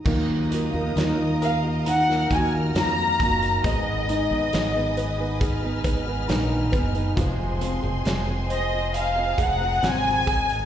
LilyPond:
<<
  \new Staff \with { instrumentName = "String section" } { \time 4/4 \key ees \minor \tempo 4 = 68 << { ees'''2 f'''2 | ees'''2 f'''2 | c'''2 bes''2 | } \\ { <bes' ees'' bes''>1 | <ces'' ees'' aes''>1 | <aes' c'' aes''>1 | } >> }
  \new Staff \with { instrumentName = "Violin section" } { \time 4/4 \key ees \minor r4. f''8 ges''8 aes''8 bes''4 | ees''2 r2 | r4. ees''8 f''8 ges''8 aes''4 | }
  \new Staff \with { instrumentName = "Grand piano" } { \time 4/4 \key ees \minor ees8 bes8 ees'8 bes'8 ees'8 ges'8 bes8 ges'8 | aes8 ees'8 aes'8 ces''8 aes'8 ces''8 ees'8 ces''8 | f8 c'4 c''4 aes'8 c'8 aes'8 | }
  \new Staff \with { instrumentName = "Steel-string acoustic guitar" } { \time 4/4 \key ees \minor <ees ges bes ees' f'>8 <ges bes ees' f'>16 <bes ees' f'>16 <ees ges bes ees' f'>16 <bes ees' f'>8 <bes ees' f'>8 <bes ees' f'>16 <ges bes ees' f'>16 <bes ees' f'>16 <ees bes ees' f'>8 <ges bes ees' f'>8 | <aes, ees aes ces' ees' aes'>8 <aes ces' ees' aes'>16 <aes ces' ees' aes'>16 <aes, ees aes ces' ees' aes'>16 <aes ces' ees' aes'>8 <aes ces' ees' aes'>8 <aes ces' ees' aes'>16 <aes ces' ees' aes'>16 <aes ces' ees' aes'>16 <aes, ees aes ces' ees' aes'>8 <aes ces' ees' aes'>16 <aes ces' ees' aes'>16 | <f, c f aes c' aes'>8 <f aes c' aes'>16 <f aes c' aes'>16 <f, c f aes c' aes'>16 <f aes c' aes'>8 <f aes c' aes'>8 <f aes c' aes'>16 <f aes c' aes'>16 <f aes c' aes'>16 <f, c f aes c' aes'>8 <f aes c' aes'>8 | }
  \new Staff \with { instrumentName = "Fretless electric bass" } { \clef bass \time 4/4 \key ees \minor ees,8. ees,16 ees,4. ees,8 f,8 ges,,8 | aes,,8. aes,,16 aes,,4. aes,,8 bes,,8 ges,,8 | f,,8. f,,16 f,,4. f,,8 aes,,8 aes,,8 | }
  \new DrumStaff \with { instrumentName = "Drums" } \drummode { \time 4/4 <cymc bd>8 hh8 <hh sn>8 hh8 hh16 sn16 <hh bd>8 <hh sn>8 <hh bd>16 hh16 | <hh bd>8 hh8 <hh sn>8 hh8 <hh bd>8 <hh bd>8 <hh sn>8 <hh bd>16 hh16 | <hh bd>8 hh8 <hh sn>8 hh8 hh8 <hh bd>8 <hh sn>8 <hh bd>16 hh16 | }
>>